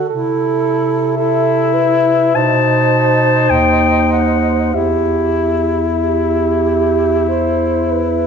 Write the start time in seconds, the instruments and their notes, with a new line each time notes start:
0.09 bass clarinet C3, tenor saxophone E4, alto saxophone A4
1.15 tenor saxophone E4, alto saxophone A4, clarinet E5
1.74 alto saxophone B4
2.35 bass clarinet B2, tenor saxophone D#4, alto saxophone C5, clarinet A5
3.50 bass clarinet D#2, clarinet G5
4.13 clarinet F#5
4.74 bass clarinet E2, tenor saxophone E4, alto saxophone G4, clarinet E5
6.00 alto saxophone G4
7.29 alto saxophone C5
7.91 alto saxophone B4